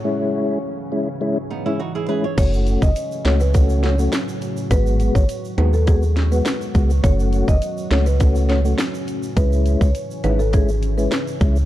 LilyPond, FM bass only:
\new Staff \with { instrumentName = "FM bass" } { \clef bass \time 4/4 \key fis \dorian \tempo 4 = 103 r1 | fis,,8. fis,,16 r8 cis,4. r4 | gis,,8. gis,,16 r8 dis,4. r8 cis,8 | fis,,8. fis,,16 r8 cis,4. r4 |
cis,8. cis,16 r8 gis,,4. r8 cis,8 | }